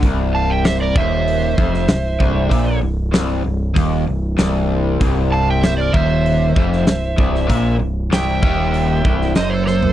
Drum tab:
HH |o---o---o---o---|o---o---o---o---|o---o---o---o---|o---o---o---o---|
SD |----o------oo---|----o-------o---|----o------oo--o|----o------oo-o-|
FT |----------------|----------------|----------------|---------------o|
BD |o-----o---o---o-|o-------o-------|o-----o---o---o-|o-----o---o-----|